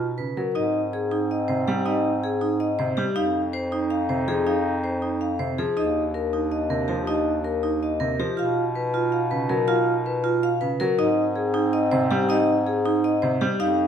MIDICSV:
0, 0, Header, 1, 6, 480
1, 0, Start_track
1, 0, Tempo, 372671
1, 712, Time_signature, 7, 3, 24, 8
1, 17868, End_track
2, 0, Start_track
2, 0, Title_t, "Vibraphone"
2, 0, Program_c, 0, 11
2, 480, Note_on_c, 0, 70, 54
2, 717, Note_on_c, 0, 75, 63
2, 787, Note_off_c, 0, 70, 0
2, 1025, Note_off_c, 0, 75, 0
2, 1202, Note_on_c, 0, 68, 56
2, 1507, Note_off_c, 0, 68, 0
2, 1689, Note_on_c, 0, 75, 54
2, 1990, Note_off_c, 0, 75, 0
2, 2158, Note_on_c, 0, 67, 66
2, 2395, Note_on_c, 0, 75, 68
2, 2466, Note_off_c, 0, 67, 0
2, 2705, Note_off_c, 0, 75, 0
2, 2879, Note_on_c, 0, 68, 58
2, 3186, Note_off_c, 0, 68, 0
2, 3351, Note_on_c, 0, 75, 65
2, 3663, Note_off_c, 0, 75, 0
2, 3824, Note_on_c, 0, 67, 75
2, 4067, Note_on_c, 0, 77, 73
2, 4141, Note_off_c, 0, 67, 0
2, 4382, Note_off_c, 0, 77, 0
2, 4551, Note_on_c, 0, 72, 64
2, 4864, Note_off_c, 0, 72, 0
2, 5030, Note_on_c, 0, 77, 60
2, 5343, Note_off_c, 0, 77, 0
2, 5512, Note_on_c, 0, 68, 69
2, 5752, Note_on_c, 0, 77, 66
2, 5824, Note_off_c, 0, 68, 0
2, 6064, Note_off_c, 0, 77, 0
2, 6230, Note_on_c, 0, 72, 56
2, 6543, Note_off_c, 0, 72, 0
2, 6710, Note_on_c, 0, 77, 55
2, 7023, Note_off_c, 0, 77, 0
2, 7193, Note_on_c, 0, 68, 62
2, 7434, Note_on_c, 0, 75, 62
2, 7504, Note_off_c, 0, 68, 0
2, 7744, Note_off_c, 0, 75, 0
2, 7913, Note_on_c, 0, 70, 53
2, 8224, Note_off_c, 0, 70, 0
2, 8391, Note_on_c, 0, 75, 55
2, 8704, Note_off_c, 0, 75, 0
2, 8861, Note_on_c, 0, 67, 62
2, 9111, Note_on_c, 0, 75, 62
2, 9180, Note_off_c, 0, 67, 0
2, 9424, Note_off_c, 0, 75, 0
2, 9589, Note_on_c, 0, 70, 53
2, 9903, Note_off_c, 0, 70, 0
2, 10082, Note_on_c, 0, 75, 53
2, 10387, Note_off_c, 0, 75, 0
2, 10556, Note_on_c, 0, 67, 65
2, 10804, Note_on_c, 0, 77, 65
2, 10865, Note_off_c, 0, 67, 0
2, 11108, Note_off_c, 0, 77, 0
2, 11276, Note_on_c, 0, 71, 52
2, 11585, Note_off_c, 0, 71, 0
2, 11748, Note_on_c, 0, 77, 57
2, 12063, Note_off_c, 0, 77, 0
2, 12229, Note_on_c, 0, 70, 71
2, 12464, Note_on_c, 0, 77, 68
2, 12543, Note_off_c, 0, 70, 0
2, 12781, Note_off_c, 0, 77, 0
2, 12957, Note_on_c, 0, 71, 57
2, 13265, Note_off_c, 0, 71, 0
2, 13437, Note_on_c, 0, 77, 68
2, 13746, Note_off_c, 0, 77, 0
2, 13911, Note_on_c, 0, 70, 73
2, 14153, Note_on_c, 0, 75, 76
2, 14223, Note_off_c, 0, 70, 0
2, 14464, Note_off_c, 0, 75, 0
2, 14626, Note_on_c, 0, 68, 61
2, 14942, Note_off_c, 0, 68, 0
2, 15110, Note_on_c, 0, 75, 74
2, 15423, Note_off_c, 0, 75, 0
2, 15594, Note_on_c, 0, 67, 85
2, 15840, Note_on_c, 0, 75, 84
2, 15904, Note_off_c, 0, 67, 0
2, 16146, Note_off_c, 0, 75, 0
2, 16314, Note_on_c, 0, 68, 64
2, 16624, Note_off_c, 0, 68, 0
2, 16800, Note_on_c, 0, 75, 70
2, 17106, Note_off_c, 0, 75, 0
2, 17273, Note_on_c, 0, 67, 82
2, 17516, Note_on_c, 0, 77, 85
2, 17584, Note_off_c, 0, 67, 0
2, 17825, Note_off_c, 0, 77, 0
2, 17868, End_track
3, 0, Start_track
3, 0, Title_t, "Clarinet"
3, 0, Program_c, 1, 71
3, 0, Note_on_c, 1, 63, 64
3, 416, Note_off_c, 1, 63, 0
3, 720, Note_on_c, 1, 60, 61
3, 3784, Note_off_c, 1, 60, 0
3, 4068, Note_on_c, 1, 63, 70
3, 7138, Note_off_c, 1, 63, 0
3, 7431, Note_on_c, 1, 62, 61
3, 10500, Note_off_c, 1, 62, 0
3, 10786, Note_on_c, 1, 63, 61
3, 13857, Note_off_c, 1, 63, 0
3, 14151, Note_on_c, 1, 60, 71
3, 17220, Note_off_c, 1, 60, 0
3, 17511, Note_on_c, 1, 63, 77
3, 17868, Note_off_c, 1, 63, 0
3, 17868, End_track
4, 0, Start_track
4, 0, Title_t, "Vibraphone"
4, 0, Program_c, 2, 11
4, 228, Note_on_c, 2, 71, 43
4, 542, Note_off_c, 2, 71, 0
4, 711, Note_on_c, 2, 63, 62
4, 1024, Note_off_c, 2, 63, 0
4, 1434, Note_on_c, 2, 63, 70
4, 1745, Note_off_c, 2, 63, 0
4, 1907, Note_on_c, 2, 72, 52
4, 2222, Note_off_c, 2, 72, 0
4, 2392, Note_on_c, 2, 63, 66
4, 2704, Note_off_c, 2, 63, 0
4, 3107, Note_on_c, 2, 63, 74
4, 3422, Note_off_c, 2, 63, 0
4, 3590, Note_on_c, 2, 72, 57
4, 3903, Note_off_c, 2, 72, 0
4, 4068, Note_on_c, 2, 63, 72
4, 4383, Note_off_c, 2, 63, 0
4, 4792, Note_on_c, 2, 63, 76
4, 5104, Note_off_c, 2, 63, 0
4, 5271, Note_on_c, 2, 72, 56
4, 5583, Note_off_c, 2, 72, 0
4, 5753, Note_on_c, 2, 63, 61
4, 6064, Note_off_c, 2, 63, 0
4, 6468, Note_on_c, 2, 63, 61
4, 6782, Note_off_c, 2, 63, 0
4, 6946, Note_on_c, 2, 72, 52
4, 7262, Note_off_c, 2, 72, 0
4, 7429, Note_on_c, 2, 63, 65
4, 7743, Note_off_c, 2, 63, 0
4, 8154, Note_on_c, 2, 63, 60
4, 8464, Note_off_c, 2, 63, 0
4, 8632, Note_on_c, 2, 70, 52
4, 8944, Note_off_c, 2, 70, 0
4, 9111, Note_on_c, 2, 63, 64
4, 9423, Note_off_c, 2, 63, 0
4, 9829, Note_on_c, 2, 63, 65
4, 10143, Note_off_c, 2, 63, 0
4, 10304, Note_on_c, 2, 70, 55
4, 10621, Note_off_c, 2, 70, 0
4, 10782, Note_on_c, 2, 65, 64
4, 11100, Note_off_c, 2, 65, 0
4, 11512, Note_on_c, 2, 65, 71
4, 11824, Note_off_c, 2, 65, 0
4, 11990, Note_on_c, 2, 71, 53
4, 12303, Note_off_c, 2, 71, 0
4, 12467, Note_on_c, 2, 65, 71
4, 12782, Note_off_c, 2, 65, 0
4, 13187, Note_on_c, 2, 65, 78
4, 13502, Note_off_c, 2, 65, 0
4, 13664, Note_on_c, 2, 71, 62
4, 13981, Note_off_c, 2, 71, 0
4, 14150, Note_on_c, 2, 63, 77
4, 14463, Note_off_c, 2, 63, 0
4, 14862, Note_on_c, 2, 63, 87
4, 15180, Note_off_c, 2, 63, 0
4, 15346, Note_on_c, 2, 72, 67
4, 15662, Note_off_c, 2, 72, 0
4, 15826, Note_on_c, 2, 63, 80
4, 16142, Note_off_c, 2, 63, 0
4, 16556, Note_on_c, 2, 63, 87
4, 16865, Note_off_c, 2, 63, 0
4, 17030, Note_on_c, 2, 72, 64
4, 17343, Note_off_c, 2, 72, 0
4, 17511, Note_on_c, 2, 63, 77
4, 17823, Note_off_c, 2, 63, 0
4, 17868, End_track
5, 0, Start_track
5, 0, Title_t, "Grand piano"
5, 0, Program_c, 3, 0
5, 244, Note_on_c, 3, 49, 42
5, 479, Note_on_c, 3, 54, 54
5, 548, Note_off_c, 3, 49, 0
5, 786, Note_off_c, 3, 54, 0
5, 1922, Note_on_c, 3, 48, 49
5, 2164, Note_on_c, 3, 55, 71
5, 2227, Note_off_c, 3, 48, 0
5, 2468, Note_off_c, 3, 55, 0
5, 3598, Note_on_c, 3, 48, 62
5, 3833, Note_on_c, 3, 55, 71
5, 3906, Note_off_c, 3, 48, 0
5, 4144, Note_off_c, 3, 55, 0
5, 5274, Note_on_c, 3, 48, 51
5, 5510, Note_on_c, 3, 53, 63
5, 5585, Note_off_c, 3, 48, 0
5, 5823, Note_off_c, 3, 53, 0
5, 6947, Note_on_c, 3, 48, 49
5, 7196, Note_on_c, 3, 53, 66
5, 7262, Note_off_c, 3, 48, 0
5, 7505, Note_off_c, 3, 53, 0
5, 8630, Note_on_c, 3, 48, 49
5, 8875, Note_on_c, 3, 53, 60
5, 8943, Note_off_c, 3, 48, 0
5, 9185, Note_off_c, 3, 53, 0
5, 10311, Note_on_c, 3, 48, 54
5, 10555, Note_on_c, 3, 53, 65
5, 10623, Note_off_c, 3, 48, 0
5, 10865, Note_off_c, 3, 53, 0
5, 11995, Note_on_c, 3, 49, 55
5, 12233, Note_on_c, 3, 54, 69
5, 12305, Note_off_c, 3, 49, 0
5, 12544, Note_off_c, 3, 54, 0
5, 13673, Note_on_c, 3, 49, 58
5, 13920, Note_on_c, 3, 54, 76
5, 13984, Note_off_c, 3, 49, 0
5, 14227, Note_off_c, 3, 54, 0
5, 15359, Note_on_c, 3, 48, 68
5, 15600, Note_on_c, 3, 55, 80
5, 15666, Note_off_c, 3, 48, 0
5, 15907, Note_off_c, 3, 55, 0
5, 17041, Note_on_c, 3, 48, 67
5, 17278, Note_on_c, 3, 55, 79
5, 17347, Note_off_c, 3, 48, 0
5, 17586, Note_off_c, 3, 55, 0
5, 17868, End_track
6, 0, Start_track
6, 0, Title_t, "Bass clarinet"
6, 0, Program_c, 4, 71
6, 0, Note_on_c, 4, 47, 63
6, 561, Note_off_c, 4, 47, 0
6, 721, Note_on_c, 4, 44, 59
6, 3929, Note_off_c, 4, 44, 0
6, 4074, Note_on_c, 4, 41, 64
6, 7285, Note_off_c, 4, 41, 0
6, 7426, Note_on_c, 4, 39, 54
6, 10641, Note_off_c, 4, 39, 0
6, 10789, Note_on_c, 4, 47, 56
6, 14003, Note_off_c, 4, 47, 0
6, 14161, Note_on_c, 4, 44, 68
6, 17369, Note_off_c, 4, 44, 0
6, 17516, Note_on_c, 4, 41, 72
6, 17868, Note_off_c, 4, 41, 0
6, 17868, End_track
0, 0, End_of_file